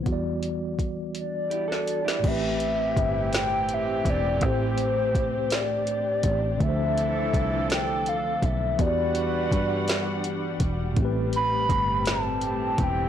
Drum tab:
CC |------------|x-----------|------------|------------|
HH |x-x-x-x-x-x-|x-x-x-x-x-x-|x-x-x-x-x-x-|x-x-x-x-x-x-|
SD |---------o-o|------o-----|------o-----|------o-----|
BD |o---o-------|o---o-----o-|o---o-----o-|o---o-----o-|

CC |------------|------------|
HH |x-x-x-x-x-x-|x-x-x-x-x-x-|
SD |------o-----|------o-----|
BD |o---o-----o-|o---o-----o-|